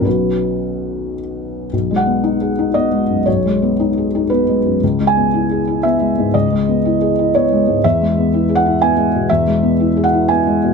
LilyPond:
<<
  \new Staff \with { instrumentName = "Felt piano" } { \time 3/4 \key b \major \tempo 4 = 118 <fis' b'>2 r4 | r8 fis''4. dis''4 | cis''2 b'4 | r8 gis''4. e''4 |
dis''2 cis''4 | e''4. fis''8 gis''4 | e''4. fis''8 gis''4 | }
  \new Staff \with { instrumentName = "Felt piano" } { \time 3/4 \key b \major <b,, fis b cis'>2. | \tuplet 3/2 { b,,8 gis8 b8 dis'8 gis'8 dis'8 b8 gis8 fis,8 } | \tuplet 3/2 { b,,8 gis8 b8 dis'8 gis'8 dis'8 b8 gis8 fis,8 } | \tuplet 3/2 { cis,8 gis8 b8 e'8 gis'8 e'8 b8 gis8 gis,8 } |
\tuplet 3/2 { cis,8 gis8 b8 e'8 gis'8 e'8 b8 gis8 gis,8 } | \tuplet 3/2 { e,8 gis8 b8 e'8 gis'8 e'8 b8 gis8 b,8 } | \tuplet 3/2 { e,8 gis8 b8 e'8 gis'8 e'8 b8 gis8 b,8 } | }
>>